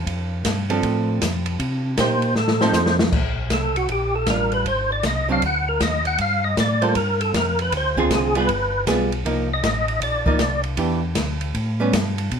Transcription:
0.06 tonewheel organ F2, kick, ride
0.45 tonewheel organ G2, kick, snare, hi-hat pedal, ride
0.70 hollow-body jazz guitar F3 C4 D4 A4, ride
0.83 tonewheel organ A2, kick, ride
1.21 tonewheel organ F2, kick, snare, hi-hat pedal, ride
1.46 ride
1.59 tonewheel organ C3, kick, ride
1.97 tonewheel organ A#2 C5, hollow-body jazz guitar A#3 D#4 G4, kick, snare, hi-hat pedal, ride
2.22 ride
2.35 tonewheel organ A2 A4, snare
2.48 snare
2.61 hollow-body jazz guitar F3 C4 D#4 A4, tonewheel organ C5, snare
2.73 tonewheel organ F2, snare, hi-hat pedal
2.86 snare
2.99 snare
3.12 tonewheel organ A#1, kick, crash
3.50 tonewheel organ C2 A4, kick, snare, hi-hat pedal, ride
3.76 tonewheel organ F#4, ride
3.89 tonewheel organ A#1 G4, kick, ride
4.16 tonewheel organ A4
4.26 tonewheel organ A1 A#4, hollow-body jazz guitar G3 D4 F4, kick, snare, hi-hat pedal, ride
4.52 tonewheel organ B4, ride
4.65 tonewheel organ G#1 C5, kick, ride
4.92 tonewheel organ D5
5.03 tonewheel organ C2 D#5, kick, snare, hi-hat pedal, ride
5.29 hollow-body jazz guitar F#3 C4 D4, tonewheel organ F5
5.42 tonewheel organ D2 F#5, kick, ride
5.69 tonewheel organ A#4
5.80 tonewheel organ D#2 D#5, kick, snare, hi-hat pedal, ride
6.05 tonewheel organ F#5, ride
6.18 tonewheel organ G2 F5, kick, ride
6.44 tonewheel organ D#5
6.57 tonewheel organ A2 D5, kick, snare, hi-hat pedal, ride
6.82 hollow-body jazz guitar G3 A#3 F4 A4, tonewheel organ C5, ride
6.95 tonewheel organ G2 A#4, kick, ride
7.21 tonewheel organ A4, ride
7.34 tonewheel organ F2 A#4, kick, snare, hi-hat pedal, ride
7.59 tonewheel organ B4, ride
7.72 tonewheel organ D2, kick, ride
7.77 tonewheel organ C5
7.97 hollow-body jazz guitar D3 C4 F4 G#4, tonewheel organ F4, kick
8.10 tonewheel organ C2, kick, snare, hi-hat pedal, ride
8.14 tonewheel organ G#4
8.35 hollow-body jazz guitar G3 B3 F4 G#4, tonewheel organ B4, ride
8.49 tonewheel organ G1, kick, ride
8.86 tonewheel organ B1, hollow-body jazz guitar G3 B3 F4 G#4, kick, snare, hi-hat pedal, ride
9.12 ride
9.25 tonewheel organ C2, hollow-body jazz guitar F3 A#3 D#4, kick, ride
9.54 tonewheel organ D#5
9.63 tonewheel organ A1, kick, snare, hi-hat pedal, ride
9.88 ride
10.01 tonewheel organ A#1 D5, kick, ride
10.26 tonewheel organ A#1, hollow-body jazz guitar F3 A#3 D#4, kick
10.39 tonewheel organ C2, kick, snare, hi-hat pedal, ride
10.64 ride
10.77 tonewheel organ E2, hollow-body jazz guitar E3 B3 D4 G4, kick, ride
11.15 tonewheel organ D2, kick, snare, hi-hat pedal, ride
11.41 ride
11.54 tonewheel organ A2, kick, ride
11.80 hollow-body jazz guitar G3 B3 C#4
11.93 tonewheel organ G2, kick, snare, hi-hat pedal, ride
12.18 ride
12.31 tonewheel organ B2, kick, ride

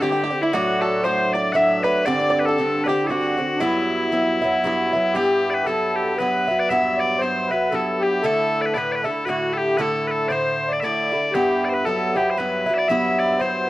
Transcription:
0.01 bouzouki G2 D3 C4 D4, bagpipes G4, accordion G4, five-string banjo G4
0.12 five-string banjo G4
0.24 five-string banjo G4
0.30 bouzouki D3 C4 D4
0.41 accordion E4, bagpipes E4, five-string banjo E4
0.53 bouzouki A2 F#3 A3 D4, bagpipes F#4, accordion F#4, five-string banjo F#4
0.81 bagpipes A4, five-string banjo A4
1.03 bouzouki A2 F#3 A3 D4, accordion C5, bagpipes C5, five-string banjo C5
1.32 accordion D5, bagpipes D5, five-string banjo D5
1.53 bouzouki A2 F#3 A3, accordion E5, five-string banjo E5, bagpipes E5 F#5
1.57 bouzouki D4
1.81 bouzouki D4, accordion B4, bagpipes B4, five-string banjo B4
1.85 bouzouki F#3 A3
2.05 bouzouki G2 D3 C4 D4, accordion D5, bagpipes D5, five-string banjo D5
2.19 five-string banjo D5
2.30 five-string banjo D5
2.39 accordion B4, bagpipes B4
2.45 accordion A4, bagpipes A4, five-string banjo A4
2.58 bouzouki G2 D3 C4 D4
2.79 accordion A4
2.84 bouzouki C4 D4, accordion G4, bagpipes G4 B4
2.89 bouzouki D3, five-string banjo G4
3.03 accordion E4, bagpipes A4
3.08 bouzouki G2 D3 C4 D4, accordion F#4, bagpipes F#4, five-string banjo F#4
3.37 bouzouki D3 C4 D4
3.55 accordion D4
3.60 bouzouki G2 F#3 B3 E4, five-string banjo E4, bagpipes E4, accordion E4
4.12 bouzouki G2 F#3 B3 E4
4.42 bouzouki F#3 B3 E4
4.64 bouzouki G2 F#3 B3 E4
4.93 bouzouki F#3 B3 E4
5.13 bouzouki G2 B3 E4, accordion G4, bagpipes G4
5.50 bagpipes B4 D5
5.64 bouzouki G2 F#3 B3, accordion A4, bagpipes A4
5.69 bouzouki E4
5.96 bagpipes G4
6.17 bouzouki G2 F#3 B3, accordion B4, bagpipes B4
6.22 bouzouki E4
6.47 bouzouki F#3 B3 E4
6.59 bagpipes D5
6.68 bouzouki G2 F#3 B3 E4, accordion E5, bagpipes E5
6.96 accordion D5, bagpipes D5
7.18 bouzouki G2, accordion C5, bagpipes C5
7.22 bouzouki F#3 B3 E4
7.47 bouzouki E4, accordion B4
7.51 bouzouki F#3 B3, bagpipes B4
7.70 bouzouki G2 F#3 B3, accordion A4
7.74 bouzouki E4, bagpipes A4
7.99 accordion G4, bagpipes G4
8.22 bouzouki A2 D3 A3 E4, accordion A4, bagpipes A4
8.62 bagpipes D5
8.66 bagpipes B4
8.74 bouzouki A2 D3 A3, accordion B4, bagpipes D5
8.78 bouzouki E4, bagpipes B4
8.92 bagpipes B4 D5
9.02 bouzouki A3 E4, accordion A4, bagpipes A4
9.06 bouzouki D3
9.25 bouzouki A2 D3 A3, accordion F#4, bagpipes F#4 B4
9.29 bouzouki E4
9.53 accordion G4, bagpipes A4
9.57 bagpipes G4
9.77 bouzouki A2 D3 A3 E4, accordion A4, bagpipes A4 B4
10.06 accordion A4, bagpipes B4
10.11 bagpipes A4
10.28 bouzouki A2 D3 A3, accordion C5, bagpipes D5
10.32 bouzouki E4, bagpipes C5
10.68 accordion D5
10.72 bagpipes D5
10.80 bouzouki A2 D3, accordion D5, bagpipes E5
10.84 bouzouki A3 E4, bagpipes D5
11.12 bouzouki D3 A3 E4
11.31 bouzouki G2, accordion G4, bagpipes G4
11.35 bouzouki B3 E4
11.65 bagpipes D5
11.69 accordion B4, bagpipes C5
11.74 bagpipes B4
11.84 bouzouki G2 F#3 B3, accordion A4, bagpipes A4
11.89 bouzouki E4
12.15 bouzouki F#3 B3 E4, accordion G4, bagpipes G4
12.30 bagpipes C5
12.36 bouzouki G2 F#3, accordion B4, bagpipes B4
12.40 bouzouki B3 E4
12.66 bouzouki B3 E4
12.70 bouzouki F#3
12.75 accordion D5, bagpipes D5 E5
12.88 bouzouki G2 F#3 B3 E4, accordion E5, bagpipes E5
13.19 bagpipes D5
13.39 bouzouki G2 F#3 B3 E4, accordion C5, bagpipes C5

